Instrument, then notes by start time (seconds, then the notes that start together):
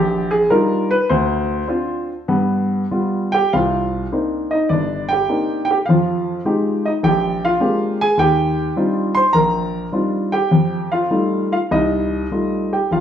grand piano
Already playing: A#1 G4
0.31 G#4
0.50 G3 D4 D#4 F4 A#4
0.91 B4
1.09 D2 C5
1.68 C4 D4 F4
2.28 G2 B3
2.91 G3 B3 F4
3.32 G4 G5
3.53 C2 C3 F4 F5
4.12 A#3 C4 D4 D#4
4.51 D#4 D#5
4.69 G1 D4 D5
5.09 G5
5.13 G4
5.29 A#3 C4 D4 D#4
5.65 G5
5.71 G4
5.86 F2 F3 F5
5.90 F4
6.45 G#3 D#4 F4 G4
6.86 D#4 D#5
7.03 A#1 G4 G5
7.45 F4 F5
7.60 G#3 A#3 C4 D4 G4
8.01 G#4 G#5
8.17 D#2 G4 G5
8.76 G3 C4 D4 D#4 F4
9.15 C5 C6
9.33 A#1 A#4 A#5
9.92 G3 C4 D4 D#4 F4
10.32 G4 G5
10.51 F2
10.92 F4 F5
11.10 G3 A3 D#4 F4
11.52 F4 F5
11.71 C2 D#4 D#5
12.31 G3 A3 D#4 F4
12.73 G4 G5
12.91 A#1 F4 F5